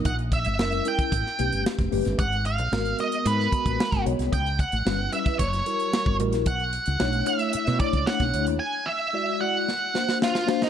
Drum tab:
HH |xxxx-xxxx-xx-xox|xxxx-xxxx-xx-xxx|xxxx--xxxxxx--xx|xxxx-xxxxxxx-xxx|
SD |----o----o--oo-o|----o----o--oo-o|----o----o--o--o|----o----o--oo--|
BD |o-o----oo----o--|o---------oo-o--|o-o----oo----o--|o---------oo-o--|

HH |----------------|
SD |--------o-oooooo|
BD |----------------|